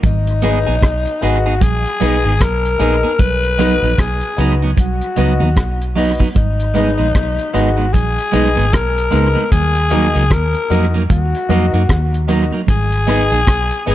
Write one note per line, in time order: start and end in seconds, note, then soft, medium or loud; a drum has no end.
0.03 0.64 G#1 loud
0.03 1.25 D#4 loud
0.03 kick loud
0.03 closed hi-hat medium
0.03 low conga medium
0.27 closed hi-hat medium
0.42 0.58 B3 medium
0.42 0.64 D#4 medium
0.42 0.58 D#4 medium
0.42 0.64 G#4 medium
0.42 0.58 G#4 medium
0.42 0.65 B4 medium
0.42 0.65 D#5 loud
0.42 closed hi-hat medium
0.42 high conga medium
0.42 low conga medium
0.66 0.82 A#1 medium
0.66 0.75 B3 medium
0.66 0.75 D#4 medium
0.66 0.74 G#4 medium
0.81 1.05 B1 medium
0.81 kick loud
0.81 cross-stick loud
0.81 closed hi-hat medium
0.81 high conga soft
1.06 closed hi-hat soft
1.21 1.60 G#1 medium
1.21 1.37 B3 medium
1.21 1.43 D#4 medium
1.21 1.38 D#4 medium
1.21 1.64 F#4 medium
1.21 1.43 G#4 medium
1.21 1.38 G#4 loud
1.21 1.43 B4 medium
1.21 1.44 D#5 loud
1.21 closed hi-hat medium
1.46 1.54 B3 soft
1.46 1.54 D#4 medium
1.46 1.54 G#4 medium
1.61 1.84 A#1 loud
1.61 2.43 G#4 loud
1.61 kick loud
1.61 closed hi-hat medium
1.61 low conga medium
1.86 closed hi-hat soft
2.00 2.24 B1 medium
2.00 2.16 B3 medium
2.00 2.22 D#4 medium
2.00 2.17 D#4 medium
2.00 2.22 G#4 medium
2.00 2.17 G#4 medium
2.00 2.22 B4 medium
2.00 2.22 D#5 loud
2.00 closed hi-hat medium
2.00 low conga medium
2.24 2.40 G#1 medium
2.24 2.33 B3 soft
2.24 2.33 D#4 medium
2.24 2.32 G#4 medium
2.24 2.31 B4 soft
2.24 2.30 D#5 soft
2.40 2.78 B1 loud
2.40 3.22 A#4 loud
2.40 kick loud
2.40 cross-stick loud
2.40 closed hi-hat medium
2.40 high conga soft
2.65 closed hi-hat medium
2.79 3.03 A#1 medium
2.79 2.95 B3 medium
2.79 3.01 D#4 medium
2.79 2.95 D#4 medium
2.79 3.01 G#4 medium
2.79 2.95 G#4 medium
2.79 3.01 B4 medium
2.79 3.02 D#5 loud
2.79 closed hi-hat medium
2.79 high conga medium
3.03 3.12 B3 medium
3.03 3.12 D#4 medium
3.03 3.11 G#4 medium
3.03 high conga soft
3.19 3.80 B1 loud
3.19 4.01 B4 loud
3.19 kick loud
3.19 closed hi-hat medium
3.19 low conga medium
3.43 closed hi-hat soft
3.58 3.74 F#3 loud
3.58 3.74 B3 loud
3.58 3.80 D#4 medium
3.58 3.74 D#4 loud
3.58 3.80 F#4 medium
3.58 3.81 B4 medium
3.58 3.81 D#5 loud
3.58 cross-stick medium
3.58 closed hi-hat medium
3.58 high conga soft
3.58 low conga medium
3.82 3.98 A#1 medium
3.82 3.92 F#3 medium
3.82 3.91 B3 medium
3.82 3.91 D#4 medium
3.98 4.21 B1 medium
3.98 4.53 G#4 loud
3.98 kick loud
3.98 cross-stick loud
3.98 closed hi-hat medium
3.98 high conga medium
4.21 closed hi-hat medium
4.37 4.76 C#2 medium
4.37 4.53 F#3 medium
4.37 4.54 B3 medium
4.37 4.59 D#4 medium
4.37 4.54 D#4 loud
4.37 4.59 F#4 medium
4.37 4.59 B4 medium
4.37 4.60 D#5 loud
4.37 closed hi-hat medium
4.62 4.71 F#3 soft
4.62 4.70 B3 medium
4.62 4.70 D#4 medium
4.77 5.00 B1 medium
4.77 5.93 F#4 medium
4.77 kick loud
4.77 closed hi-hat medium
4.77 low conga medium
5.01 closed hi-hat soft
5.16 5.40 C#2 medium
5.16 5.32 F#3 medium
5.16 5.32 B3 medium
5.16 5.38 D#4 medium
5.16 5.33 D#4 medium
5.16 5.38 F#4 medium
5.16 5.39 B4 medium
5.16 5.39 D#5 loud
5.16 closed hi-hat medium
5.16 low conga medium
5.40 5.56 D#2 medium
5.40 5.49 F#3 soft
5.40 5.49 B3 medium
5.40 5.48 D#4 medium
5.40 5.47 B4 soft
5.40 5.47 D#5 soft
5.40 high conga medium
5.56 6.17 B1 medium
5.56 kick loud
5.56 cross-stick loud
5.56 closed hi-hat medium
5.56 high conga medium
5.82 closed hi-hat medium
5.95 6.11 F#3 medium
5.95 6.11 B3 medium
5.95 6.18 D#4 loud
5.95 6.12 D#4 loud
5.95 6.18 F#4 medium
5.95 6.18 B4 medium
5.95 6.18 D#5 loud
5.95 open hi-hat medium
5.95 high conga medium
6.19 6.28 F#3 soft
6.19 6.28 B3 medium
6.19 6.27 D#4 medium
6.19 kick medium
6.19 high conga soft
6.35 6.96 G#1 medium
6.35 7.56 D#4 loud
6.35 kick loud
6.35 closed hi-hat medium
6.35 low conga medium
6.60 closed hi-hat medium
6.74 6.90 G#3 medium
6.74 6.90 B3 medium
6.74 6.96 D#4 medium
6.74 6.90 D#4 loud
6.74 6.97 G#4 medium
6.74 6.97 B4 medium
6.74 6.97 D#5 medium
6.74 closed hi-hat medium
6.74 high conga soft
6.74 low conga medium
6.98 7.14 A#1 medium
6.98 7.07 G#3 soft
6.98 7.07 B3 medium
6.98 7.06 D#4 medium
7.15 7.38 B1 medium
7.15 kick loud
7.15 cross-stick loud
7.15 closed hi-hat medium
7.15 high conga medium
7.39 closed hi-hat medium
7.53 7.92 G#1 medium
7.53 7.69 G#3 medium
7.53 7.69 B3 medium
7.53 7.75 D#4 loud
7.53 7.69 D#4 loud
7.53 7.95 F#4 medium
7.53 7.76 G#4 medium
7.53 7.76 B4 medium
7.53 7.76 D#5 loud
7.53 closed hi-hat medium
7.77 7.86 G#3 medium
7.77 7.86 B3 medium
7.77 7.85 D#4 medium
7.93 8.17 A#1 medium
7.93 8.75 G#4 loud
7.93 kick loud
7.93 closed hi-hat medium
7.93 low conga medium
8.19 closed hi-hat medium
8.32 8.56 B1 medium
8.32 8.48 G#3 medium
8.32 8.48 B3 medium
8.32 8.54 D#4 medium
8.32 8.48 D#4 medium
8.32 8.55 G#4 medium
8.32 8.55 B4 medium
8.32 8.55 D#5 loud
8.32 closed hi-hat medium
8.32 low conga medium
8.56 8.72 G#1 medium
8.56 8.65 G#3 medium
8.56 8.65 B3 medium
8.56 8.64 D#4 medium
8.56 8.63 B4 soft
8.56 8.63 D#5 soft
8.56 closed hi-hat soft
8.73 9.11 B1 medium
8.73 9.51 A#4 loud
8.73 kick loud
8.73 cross-stick loud
8.73 closed hi-hat medium
8.73 high conga medium
8.98 closed hi-hat soft
9.11 9.35 C#2 medium
9.11 9.27 G#3 medium
9.11 9.27 B3 medium
9.11 9.33 D#4 medium
9.11 9.27 D#4 medium
9.11 9.34 G#4 medium
9.11 9.34 B4 medium
9.11 9.34 D#5 loud
9.11 closed hi-hat medium
9.11 high conga medium
9.34 9.44 G#3 medium
9.34 9.44 B3 medium
9.34 9.43 D#4 medium
9.34 closed hi-hat soft
9.34 high conga soft
9.52 10.12 D#2 loud
9.52 10.34 G#4 loud
9.52 kick loud
9.52 closed hi-hat medium
9.52 low conga medium
9.75 closed hi-hat medium
9.90 10.06 F#3 medium
9.90 10.06 A#3 medium
9.90 10.12 D#4 medium
9.90 10.07 D#4 loud
9.90 10.12 F#4 medium
9.90 10.13 A#4 medium
9.90 10.13 D#5 loud
9.90 closed hi-hat medium
9.90 high conga soft
9.90 low conga medium
10.15 10.30 C#2 medium
10.15 10.23 F#3 medium
10.15 10.23 A#3 medium
10.15 10.23 D#4 medium
10.15 closed hi-hat soft
10.30 10.53 D#2 medium
10.30 10.86 A#4 loud
10.30 kick loud
10.30 cross-stick loud
10.30 closed hi-hat medium
10.30 high conga medium
10.54 closed hi-hat soft
10.70 11.08 F2 medium
10.70 10.85 F#3 medium
10.70 10.86 A#3 medium
10.70 10.92 D#4 loud
10.70 10.86 D#4 medium
10.70 10.92 F#4 medium
10.70 10.92 A#4 medium
10.70 10.92 D#5 loud
10.70 closed hi-hat medium
10.94 11.03 F#3 soft
10.94 11.02 A#3 medium
10.94 11.02 D#4 medium
10.94 closed hi-hat soft
11.10 11.33 D#2 medium
11.10 12.25 F#4 medium
11.10 kick loud
11.10 closed hi-hat medium
11.10 low conga medium
11.35 closed hi-hat medium
11.49 11.72 F2 medium
11.49 11.65 F#3 medium
11.49 11.65 A#3 medium
11.49 11.71 D#4 loud
11.49 11.65 D#4 medium
11.49 11.71 F#4 medium
11.49 11.71 A#4 loud
11.49 11.71 D#5 loud
11.49 closed hi-hat medium
11.49 low conga medium
11.73 11.88 F#2 medium
11.73 11.82 F#3 medium
11.73 11.82 A#3 medium
11.73 11.81 D#4 medium
11.73 11.79 A#4 soft
11.73 11.79 D#5 soft
11.73 closed hi-hat soft
11.89 12.50 D#2 loud
11.89 kick loud
11.89 cross-stick loud
11.89 closed hi-hat medium
11.89 high conga soft
12.14 closed hi-hat medium
12.28 12.44 F#3 medium
12.28 12.44 A#3 medium
12.28 12.50 D#4 medium
12.28 12.44 D#4 loud
12.28 12.50 F#4 medium
12.28 12.50 A#4 medium
12.28 12.50 D#5 loud
12.28 closed hi-hat medium
12.28 high conga medium
12.52 12.61 F#3 medium
12.52 12.61 A#3 medium
12.52 12.60 D#4 medium
12.52 high conga soft
12.67 13.29 G#1 loud
12.67 13.84 G#4 loud
12.67 kick loud
12.67 closed hi-hat loud
12.67 low conga medium
12.92 closed hi-hat soft
13.07 13.23 B3 medium
13.07 13.29 D#4 loud
13.07 13.23 D#4 medium
13.07 13.29 G#4 medium
13.07 13.24 G#4 medium
13.07 13.29 B4 medium
13.07 13.29 D#5 loud
13.07 cross-stick medium
13.07 closed hi-hat medium
13.07 high conga medium
13.07 low conga medium
13.31 13.47 A#1 medium
13.31 13.40 B3 medium
13.31 13.40 D#4 medium
13.31 13.40 G#4 medium
13.31 closed hi-hat soft
13.47 13.70 B1 loud
13.47 kick loud
13.47 cross-stick loud
13.47 closed hi-hat medium
13.47 high conga medium
13.71 closed hi-hat medium
13.86 13.95 G#1 medium
13.86 13.95 B3 medium
13.86 13.95 D#4 medium
13.86 13.95 G#4 medium
13.86 13.95 B4 medium
13.86 13.95 D#5 loud
13.86 closed hi-hat medium
13.90 13.95 G#4 loud